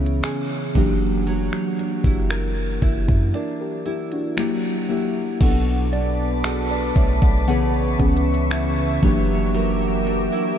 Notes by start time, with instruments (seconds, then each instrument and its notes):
Already playing: 808-style bass C#2, nylon-string guitar C#3 E4, synth keys E3 B3 C#4 G#4
0.06 closed hi-hat
0.23 nylon-string guitar G#4, finger snap, closed hi-hat
0.75 808-style bass F#1, synth keys E3 A#3 D4 G4, nylon-string guitar F#3, kick
1.27 nylon-string guitar F#3, closed hi-hat
1.53 finger snap
1.79 nylon-string guitar D4, closed hi-hat
2.04 808-style bass F#1, nylon-string guitar E4, kick
2.30 nylon-string guitar A#4, finger snap, closed hi-hat
2.82 808-style bass F#1, nylon-string guitar E4, kick, closed hi-hat
3.08 808-style bass F#2, kick
3.34 nylon-string guitar D4, synth keys A#4 D5, closed hi-hat
3.61 synth keys G4 A#4
3.86 nylon-string guitar E4, synth keys E4 G4, closed hi-hat
4.12 synth keys D4 F#4, closed hi-hat
4.37 synth keys F#3 A#3 E4 G4, nylon-string guitar F#3, finger snap, closed hi-hat
4.88 synth keys F#3 A#3 E4 G4, nylon-string guitar E4
5.40 808-style bass B1, nylon-string guitar B2 F#4, synth keys F#3 B3 D4 A4, ambient pad B4 A5 D6, kick, closed hi-hat, crash
5.92 nylon-string guitar D4, synth bell D5, closed hi-hat
6.44 nylon-string guitar F#4, synth keys G#4 B4, finger snap, closed hi-hat
6.71 synth keys B4 D5
6.96 808-style bass B1, nylon-string guitar A3, synth keys C#5 E5, kick, closed hi-hat
7.22 808-style bass B1, synth keys D5 F#5, kick
7.47 nylon-string guitar C#3, synth keys C#3 E3 B3 G#4, ambient pad E5 C#6, synth bell F#5, closed hi-hat
7.99 808-style bass C#2, synth keys E3 B3 C#4 G#4, nylon-string guitar B3, kick, closed hi-hat
8.17 closed hi-hat
8.34 closed hi-hat
8.51 nylon-string guitar E4, finger snap, closed hi-hat
9.02 808-style bass F#1, synth keys E3 A#3 D4 G4, nylon-string guitar F#3, ambient pad G4 A#4 E5 D6, kick
9.54 nylon-string guitar F#3 A#4, closed hi-hat
10.06 nylon-string guitar D4, closed hi-hat
10.32 nylon-string guitar E4